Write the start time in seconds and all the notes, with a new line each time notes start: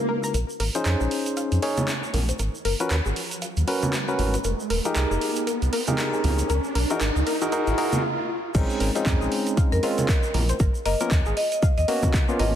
Already playing: C#3 G#3 D#4 E4 F#4 B4, swell
0.09 A#4
0.24 A#5, shaker
0.34 A#1 A#4, closed hi-hat, riser, shaker
0.49 shaker
0.60 G#1 A#4, open hi-hat
0.75 C#4 D#4 F4 G#4 C5, closed hi-hat, shaker
0.85 F2 A#5, clap, closed hi-hat, shaker
1.01 A#1 G#4, shaker
1.11 open hi-hat
1.26 closed hi-hat, shaker
1.37 F5, closed hi-hat, shaker
1.52 F2, closed hi-hat, shaker
1.62 C#4 D#4 G#4 A#4 C#5, open hi-hat
1.77 closed hi-hat, high conga, shaker
1.88 clap, closed hi-hat, shaker
2.03 shaker
2.14 A#1 A#4, open hi-hat, low conga
2.29 C5, closed hi-hat, shaker
2.39 G#1 A#4, closed hi-hat, shaker
2.55 shaker
2.65 F#1 A#4, open hi-hat
2.80 C#4 F4 F#4 A#4 B4, closed hi-hat, shaker
2.90 D#2 A#5, clap, closed hi-hat, shaker
3.06 G#1 G#4, shaker
3.16 open hi-hat
3.31 closed hi-hat, shaker
3.42 F5, closed hi-hat, shaker
3.57 D#2, closed hi-hat, shaker
3.68 C#4 F#4 A#4 B4, open hi-hat
3.83 closed hi-hat, high conga, shaker
3.93 clap, closed hi-hat, shaker
4.08 C#4 F#4 A#4 B4, shaker
4.19 G#1 A#4, open hi-hat, low conga
4.34 B4, closed hi-hat, shaker
4.44 F1 A#4, closed hi-hat, shaker
4.60 shaker
4.70 D#1 A#4, open hi-hat
4.85 D#4 F4 G4 G#4 A#4, closed hi-hat, shaker
4.95 C2 A#5, clap, closed hi-hat, shaker
5.11 F1 G#4, shaker
5.21 open hi-hat
5.36 closed hi-hat, shaker
5.47 A#4, closed hi-hat, shaker
5.62 C2, closed hi-hat, shaker
5.73 A#4, open hi-hat
5.87 D#4 F4 G4 G#4 A#4, closed hi-hat, high conga, shaker
5.98 A#5, clap, closed hi-hat, shaker
6.13 G#4, shaker
6.24 C#2, open hi-hat, low conga
6.39 closed hi-hat, shaker
6.50 C#2 A#4, closed hi-hat, shaker
6.64 shaker
6.75 B1 A#4, open hi-hat
6.90 D#4 E4 F#4 G#4 A#4, closed hi-hat, shaker
7.01 G#1 A#4, clap, closed hi-hat, shaker
7.16 C#2, shaker
7.27 A#4, open hi-hat
7.41 D#4 E4 F#4 G#4 A#4, closed hi-hat, shaker
7.52 D#4 F#4 G#4 A#4, closed hi-hat, shaker
7.67 G#1, closed hi-hat, shaker
7.78 D#4 F#4 G#4 A#4, open hi-hat
7.93 closed hi-hat, high conga, shaker
8.55 A#1 G#3 C4 C#4 D#4 A#4, kick, closed hi-hat, crash, shaker
8.70 shaker
8.80 G#1 A#4, open hi-hat
8.95 G#3 C4 C#4 D#4 F4, closed hi-hat, shaker
9.06 F2 A#5, kick, clap, closed hi-hat, shaker
9.21 A#1 G#4, shaker
9.32 open hi-hat
9.47 closed hi-hat, shaker
9.57 F5, kick, closed hi-hat, shaker
9.72 F2 A#4, closed hi-hat, shaker
9.83 G#3 C4 C#4 F4 A#4 D#5, open hi-hat
9.98 closed hi-hat, high conga, shaker
10.09 kick, clap, closed hi-hat, shaker
10.23 shaker
10.34 A#1 A#4, open hi-hat, low conga
10.49 C5, closed hi-hat, shaker
10.60 G#1 A#4, kick, closed hi-hat, shaker
10.75 shaker
10.86 F#1 A#4 D#5, open hi-hat
11.00 A#3 B3 C#4 F4 A#4, closed hi-hat, shaker
11.11 D#2 A#5, kick, clap, closed hi-hat, shaker
11.26 G#1 G#4, shaker
11.37 D#5, open hi-hat
11.52 D#5, closed hi-hat, shaker
11.63 F5, kick, closed hi-hat, shaker
11.78 D#2 D#5, closed hi-hat, shaker
11.88 A#3 B3 C#4 F#4 A#4 D#5, open hi-hat
12.03 kick, closed hi-hat, high conga, shaker
12.14 kick, clap, closed hi-hat, shaker
12.29 A#3 B3 C#4 F4, shaker
12.39 G#1 A#4 D#5, open hi-hat, low conga